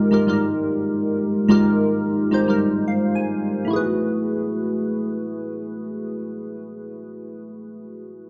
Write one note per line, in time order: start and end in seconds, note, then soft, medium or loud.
0.00 0.11 G#3 loud
0.00 0.12 D#4 loud
0.00 0.12 F4 loud
0.00 0.13 G4 loud
0.00 0.14 A#4 loud
0.11 0.24 G#3 medium
0.11 0.25 D#4 medium
0.11 0.25 F4 medium
0.11 0.25 G4 medium
0.11 0.26 A#4 loud
0.27 0.33 G3 medium
0.27 1.15 D#4 medium
0.27 1.15 F4 medium
0.27 1.16 G4 medium
0.27 1.16 A#4 medium
0.33 1.18 G#3 medium
1.48 2.17 G#3 loud
1.48 2.17 D#4 loud
1.48 2.18 F4 loud
1.48 2.18 G4 loud
1.48 2.18 A#4 loud
2.31 2.45 G#3 medium
2.31 2.45 D#4 medium
2.31 2.45 F4 medium
2.31 2.46 G4 medium
2.31 2.46 C5 medium
2.47 2.53 G3 medium
2.47 3.35 D#4 medium
2.47 3.36 F4 medium
2.47 3.36 G4 medium
2.47 3.36 A#4 medium
2.54 3.38 G#3 medium
2.88 3.13 F5 medium
3.15 3.66 G#5 medium
3.65 7.34 A3 medium
3.65 7.35 E4 medium
3.70 7.36 F#4 medium
3.70 7.38 G#4 medium
3.76 7.39 B4 medium